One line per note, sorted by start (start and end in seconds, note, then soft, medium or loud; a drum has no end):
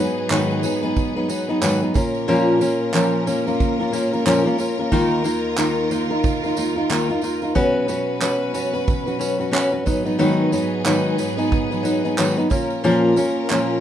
0.00 1.93 G#2 medium
0.00 0.29 F#3 medium
0.00 1.91 F#3 medium
0.00 0.29 B3 medium
0.00 1.93 B3 medium
0.00 0.30 D#4 medium
0.00 1.93 G#4 medium
0.00 0.30 B4 medium
0.30 0.63 G#2 medium
0.30 0.63 D#3 medium
0.30 0.62 F#3 medium
0.30 0.62 B3 medium
0.30 0.63 D#4 medium
0.30 0.64 B4 medium
0.30 clap loud
0.30 tambourine medium
0.63 0.83 F#3 medium
0.63 0.83 B3 medium
0.63 0.83 D#4 medium
0.63 0.81 B4 medium
0.63 tambourine medium
0.83 1.17 F#3 soft
0.83 1.17 B3 medium
0.83 1.15 D#4 medium
0.83 1.15 B4 medium
0.96 kick loud
0.96 tambourine soft
1.16 1.27 F#3 soft
1.16 1.28 B3 soft
1.16 1.29 D#4 medium
1.16 1.29 B4 medium
1.29 1.49 F#3 medium
1.29 1.49 B3 medium
1.29 1.48 D#4 medium
1.29 1.47 B4 medium
1.29 tambourine medium
1.48 1.61 F#3 medium
1.48 1.61 B3 medium
1.48 1.61 D#4 medium
1.48 1.61 B4 medium
1.61 1.81 G#2 medium
1.61 1.82 D#3 medium
1.61 1.82 F#3 loud
1.61 1.82 B3 medium
1.61 1.82 D#4 medium
1.61 1.81 B4 medium
1.61 clap medium
1.61 tambourine medium
1.82 1.94 F#3 soft
1.82 1.95 B3 medium
1.82 1.95 D#4 medium
1.82 1.95 B4 medium
1.94 2.27 A#3 medium
1.94 2.27 C#4 medium
1.94 kick loud
1.94 tambourine soft
1.96 4.90 A#2 medium
1.96 4.90 F3 medium
1.96 4.90 C#4 medium
1.96 2.27 F4 medium
1.96 7.53 A#4 loud
1.96 2.28 A#4 medium
1.96 tambourine medium
2.15 tambourine soft
2.28 2.61 A#2 loud
2.28 2.61 F3 medium
2.28 2.59 A#3 loud
2.28 2.60 C#4 medium
2.28 2.61 F4 loud
2.28 2.62 A#4 loud
2.28 tambourine soft
2.61 2.93 A#3 medium
2.61 2.93 C#4 medium
2.61 2.93 F4 medium
2.61 2.94 A#4 medium
2.61 tambourine medium
2.93 3.27 A#2 medium
2.93 3.27 F3 medium
2.93 3.25 A#3 medium
2.93 3.26 C#4 medium
2.93 3.27 F4 medium
2.93 3.27 A#4 medium
2.93 clap loud
2.93 tambourine medium
3.27 3.47 A#3 medium
3.27 3.47 C#4 medium
3.27 3.46 F4 medium
3.27 3.45 A#4 medium
3.27 tambourine medium
3.46 3.81 A#3 medium
3.46 3.80 C#4 medium
3.46 3.79 F4 medium
3.46 3.78 A#4 medium
3.46 tambourine soft
3.60 kick loud
3.60 tambourine soft
3.80 3.91 A#3 soft
3.80 3.92 C#4 medium
3.80 3.93 F4 medium
3.80 3.93 A#4 medium
3.92 4.12 A#3 medium
3.92 4.13 C#4 medium
3.92 4.12 F4 medium
3.92 4.12 A#4 medium
3.92 tambourine medium
4.13 4.25 A#3 soft
4.13 4.25 C#4 medium
4.13 4.26 F4 soft
4.13 4.25 A#4 medium
4.13 tambourine soft
4.26 4.46 A#2 loud
4.26 4.46 F3 medium
4.26 4.46 A#3 medium
4.26 4.46 C#4 loud
4.26 4.45 F4 medium
4.26 4.44 A#4 medium
4.26 clap medium
4.26 tambourine medium
4.45 4.57 A#3 medium
4.45 4.58 C#4 medium
4.45 4.58 F4 medium
4.45 4.59 A#4 medium
4.58 4.79 A#3 medium
4.58 4.79 C#4 medium
4.58 4.78 F4 medium
4.58 4.78 A#4 medium
4.58 tambourine soft
4.58 tambourine medium
4.79 4.91 A#3 soft
4.79 4.92 C#4 soft
4.79 4.92 F4 soft
4.79 4.92 A#4 medium
4.92 7.54 D#2 medium
4.92 5.25 D#3 loud
4.92 7.54 D#3 medium
4.92 5.23 A#3 medium
4.92 5.23 D#4 loud
4.92 7.53 F4 medium
4.92 5.24 F4 loud
4.92 5.25 A#4 loud
4.92 kick medium
4.92 tambourine soft
5.24 5.57 A#3 medium
5.24 5.57 D#4 medium
5.24 5.57 F4 medium
5.24 5.58 A#4 medium
5.24 tambourine medium
5.58 5.91 D#3 medium
5.58 5.89 A#3 medium
5.58 5.90 D#4 medium
5.58 5.91 F4 medium
5.58 5.91 A#4 medium
5.58 clap loud
5.58 tambourine medium
5.91 6.11 A#3 medium
5.91 6.11 D#4 medium
5.91 6.10 F4 medium
5.91 6.09 A#4 medium
5.91 tambourine medium
6.10 6.44 D#4 soft
6.10 6.44 F4 medium
6.10 6.42 A#4 medium
6.24 kick loud
6.24 tambourine soft
6.43 6.56 D#4 soft
6.43 6.57 F4 medium
6.43 6.57 A#4 medium
6.43 tambourine soft
6.57 6.77 A#3 medium
6.57 6.77 D#4 medium
6.57 6.76 F4 medium
6.57 6.75 A#4 medium
6.57 tambourine medium
6.76 6.90 D#4 soft
6.76 6.89 F4 soft
6.76 6.90 A#4 medium
6.90 7.10 D#3 medium
6.90 7.10 A#3 medium
6.90 7.10 D#4 medium
6.90 7.09 F4 loud
6.90 7.08 A#4 medium
6.90 clap loud
6.90 tambourine medium
7.09 7.22 D#4 medium
7.09 7.23 F4 medium
7.09 7.23 A#4 medium
7.21 7.43 A#3 medium
7.21 7.43 D#4 medium
7.21 tambourine soft
7.24 7.42 F4 medium
7.24 7.41 A#4 medium
7.24 tambourine medium
7.42 7.55 D#4 soft
7.42 7.56 F4 soft
7.42 7.55 A#4 soft
7.42 tambourine soft
7.55 9.85 B2 medium
7.55 12.47 F#3 medium
7.55 7.87 B3 loud
7.55 7.88 C#4 loud
7.55 9.85 C#4 medium
7.55 7.88 F#4 loud
7.55 9.85 B4 medium
7.55 7.89 B4 loud
7.55 kick loud
7.55 tambourine soft
7.88 8.20 B3 medium
7.88 8.20 C#4 medium
7.88 8.21 F#4 medium
7.88 8.22 B4 medium
7.88 tambourine medium
8.21 8.53 B3 medium
8.21 8.53 C#4 medium
8.21 8.54 F#4 medium
8.21 8.54 B4 medium
8.21 clap loud
8.21 tambourine medium
8.54 8.74 B3 medium
8.54 8.74 C#4 medium
8.54 8.73 F#4 medium
8.54 8.72 B4 medium
8.54 tambourine medium
8.73 9.07 C#4 soft
8.73 9.06 F#4 medium
8.73 9.05 B4 medium
8.73 tambourine soft
8.87 kick loud
8.87 tambourine soft
9.06 9.18 C#4 soft
9.06 9.19 F#4 medium
9.06 9.20 B4 medium
9.06 tambourine soft
9.19 9.40 B3 medium
9.19 9.40 C#4 medium
9.19 9.39 F#4 medium
9.19 9.38 B4 medium
9.19 tambourine medium
9.39 9.51 C#4 soft
9.39 9.52 F#4 medium
9.39 9.52 B4 soft
9.39 tambourine soft
9.51 9.73 B3 medium
9.51 9.72 C#4 medium
9.51 9.71 F#4 medium
9.51 9.71 B4 medium
9.51 clap loud
9.51 tambourine medium
9.72 9.86 C#4 soft
9.72 9.86 F#4 medium
9.72 9.86 B4 medium
9.85 12.48 G#2 medium
9.85 10.05 F#3 medium
9.85 10.05 B3 medium
9.85 12.48 B3 medium
9.85 10.04 D#4 medium
9.85 12.49 G#4 medium
9.85 10.04 B4 medium
9.85 kick loud
9.85 tambourine soft
9.85 tambourine medium
10.05 10.18 F#3 soft
10.05 10.18 B3 soft
10.05 10.18 D#4 medium
10.05 10.18 B4 soft
10.05 tambourine soft
10.18 10.52 G#2 medium
10.18 10.52 D#3 loud
10.18 10.51 F#3 loud
10.18 10.51 B3 medium
10.18 10.52 D#4 loud
10.18 10.53 B4 medium
10.18 tambourine soft
10.52 10.84 F#3 medium
10.52 10.84 B3 medium
10.52 10.84 D#4 medium
10.52 10.85 B4 medium
10.52 tambourine medium
10.84 11.18 G#2 medium
10.84 11.19 D#3 medium
10.84 11.17 F#3 medium
10.84 11.17 B3 medium
10.84 11.18 D#4 medium
10.84 11.18 B4 medium
10.84 clap loud
10.84 tambourine medium
11.18 11.38 F#3 medium
11.18 11.38 B3 medium
11.18 11.37 D#4 medium
11.18 11.36 B4 medium
11.18 tambourine medium
11.37 11.72 F#3 soft
11.37 11.71 B3 medium
11.37 11.71 D#4 medium
11.37 11.70 B4 medium
11.37 tambourine soft
11.52 kick loud
11.52 tambourine soft
11.71 11.82 F#3 soft
11.71 11.83 B3 medium
11.71 11.84 D#4 medium
11.71 11.84 B4 medium
11.71 tambourine soft
11.83 12.04 F#3 medium
11.83 12.04 B3 medium
11.83 12.03 D#4 medium
11.83 12.03 B4 medium
11.83 tambourine medium
12.04 12.16 F#3 soft
12.04 12.17 B3 soft
12.04 12.17 D#4 medium
12.04 12.17 B4 medium
12.04 tambourine soft
12.17 12.38 G#2 medium
12.17 12.38 D#3 medium
12.17 12.38 F#3 medium
12.17 12.37 B3 medium
12.17 12.36 D#4 loud
12.17 12.36 B4 medium
12.17 clap loud
12.17 tambourine medium
12.37 12.49 F#3 medium
12.37 12.50 B3 medium
12.37 12.51 D#4 medium
12.37 12.51 B4 medium
12.50 13.80 A#2 medium
12.50 13.80 F3 medium
12.50 12.83 A#3 medium
12.50 12.83 C#4 medium
12.50 13.80 C#4 medium
12.50 12.84 F4 medium
12.50 12.84 A#4 medium
12.50 13.80 A#4 loud
12.50 kick loud
12.50 tambourine soft
12.50 tambourine medium
12.70 tambourine soft
12.84 13.17 A#2 loud
12.84 13.17 F3 loud
12.84 13.15 A#3 medium
12.84 13.16 C#4 loud
12.84 13.17 F4 loud
12.84 13.17 A#4 loud
12.84 tambourine soft
13.16 13.49 A#3 medium
13.16 13.50 C#4 medium
13.16 13.50 F4 medium
13.16 13.50 A#4 medium
13.16 tambourine soft
13.16 tambourine medium
13.49 13.80 A#2 medium
13.49 13.80 F3 medium
13.49 13.80 A#3 medium
13.49 13.80 C#4 medium
13.49 13.80 F4 medium
13.49 13.80 A#4 medium
13.49 clap loud
13.49 tambourine medium